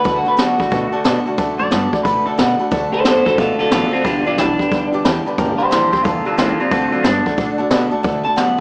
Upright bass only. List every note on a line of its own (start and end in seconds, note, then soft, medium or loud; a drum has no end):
0.05 0.22 D2 medium
0.39 0.55 F#2 medium
0.60 0.69 A2 medium
0.72 0.88 B2 medium
0.94 muted upright bass stroke medium
1.06 1.22 B2 medium
1.27 muted upright bass stroke medium
1.38 1.55 D2 loud
1.61 1.70 F#2 medium
1.73 1.89 G2 medium
2.05 2.22 B2 medium
2.28 2.37 D3 medium
2.40 2.56 B2 medium
2.61 muted upright bass stroke medium
2.72 2.88 D2 loud
2.94 muted upright bass stroke medium
3.06 3.22 F#2 medium
3.38 3.55 B2 medium
3.60 muted upright bass stroke medium
3.72 3.88 A1 medium
3.94 muted upright bass stroke medium
4.05 4.22 G1 loud
4.27 4.36 B1 loud
4.39 4.55 B1 medium
4.72 4.88 E2 medium
4.93 5.02 G2 medium
5.05 5.22 E2 medium
5.26 muted upright bass stroke medium
5.39 5.55 G1 loud
5.59 muted upright bass stroke medium
5.72 5.88 A#1 loud
5.93 6.03 D2 medium
6.05 6.22 E2 medium
6.27 muted upright bass stroke medium
6.38 6.55 C#2 medium
6.60 muted upright bass stroke medium
6.72 6.88 D2 loud
6.93 7.02 F#2 medium
7.05 7.21 G2 medium
7.38 7.55 B2 medium
7.59 7.68 D3 medium
7.71 7.88 B2 medium
7.92 muted upright bass stroke medium
8.04 8.21 D2 loud
8.26 muted upright bass stroke medium
8.37 8.54 F#2 medium